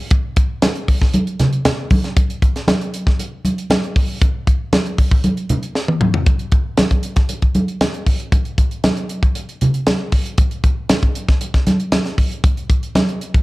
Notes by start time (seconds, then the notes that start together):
0.11 kick, closed hi-hat, muted conga
0.36 kick, closed hi-hat
0.62 snare, closed hi-hat, high conga
0.75 closed hi-hat
0.88 kick, open hi-hat
1.02 kick, snare
1.14 closed hi-hat, muted conga, high conga
1.27 closed hi-hat
1.39 snare, closed hi-hat, muted conga, low conga
1.53 closed hi-hat
1.65 snare, closed hi-hat, low conga
1.90 kick, open hi-hat, muted conga, high conga
2.04 snare, closed hi-hat
2.16 kick, closed hi-hat, muted conga
2.30 closed hi-hat
2.42 kick, closed hi-hat
2.56 snare, closed hi-hat
2.68 snare, closed hi-hat, high conga
2.81 closed hi-hat
2.94 closed hi-hat
3.07 kick, snare
3.19 closed hi-hat, muted conga
3.45 closed hi-hat, muted conga, high conga
3.58 closed hi-hat
3.70 snare, closed hi-hat, high conga
3.84 closed hi-hat
3.96 kick, open hi-hat, muted conga
4.21 kick, closed hi-hat, muted conga
4.47 kick, closed hi-hat
4.73 snare, closed hi-hat, high conga
4.86 closed hi-hat
4.98 kick, open hi-hat
5.11 kick
5.24 closed hi-hat, muted conga, high conga
5.37 closed hi-hat
5.49 closed hi-hat, muted conga, low conga
5.63 closed hi-hat
5.75 snare
5.88 high tom
6.01 mid tom, muted conga, high conga
6.14 floor tom
6.26 kick, closed hi-hat, muted conga
6.39 closed hi-hat
6.52 kick, closed hi-hat
6.77 snare, closed hi-hat, muted conga, high conga
6.91 kick, closed hi-hat
7.03 closed hi-hat
7.16 kick, snare, closed hi-hat
7.29 closed hi-hat, muted conga
7.42 kick, closed hi-hat
7.55 closed hi-hat, muted conga, high conga
7.68 closed hi-hat
7.81 snare, closed hi-hat, high conga
7.94 closed hi-hat
8.07 kick, open hi-hat
8.20 closed hi-hat
8.32 kick, closed hi-hat, muted conga
8.45 closed hi-hat
8.58 kick, closed hi-hat
8.71 closed hi-hat
8.84 snare, closed hi-hat, muted conga, high conga
8.97 closed hi-hat
9.09 closed hi-hat
9.23 kick, closed hi-hat
9.35 closed hi-hat, muted conga
9.49 closed hi-hat
9.61 closed hi-hat, muted conga, low conga
9.74 closed hi-hat
9.87 snare, closed hi-hat, high conga
10.12 kick, open hi-hat
10.26 closed hi-hat
10.38 kick, closed hi-hat, muted conga
10.51 closed hi-hat
10.64 kick, closed hi-hat
10.89 snare, closed hi-hat, muted conga, high conga
11.03 kick, closed hi-hat
11.15 closed hi-hat
11.29 kick, snare, closed hi-hat
11.41 closed hi-hat, muted conga
11.54 kick, snare, closed hi-hat
11.67 snare, closed hi-hat, muted conga, high conga
11.80 closed hi-hat
11.92 snare, closed hi-hat, high conga
12.05 snare, closed hi-hat
12.18 kick, open hi-hat
12.31 closed hi-hat
12.44 kick, closed hi-hat, muted conga
12.57 closed hi-hat
12.70 kick, closed hi-hat
12.83 closed hi-hat
12.95 snare, closed hi-hat, muted conga, high conga
13.09 closed hi-hat
13.21 closed hi-hat
13.34 kick, closed hi-hat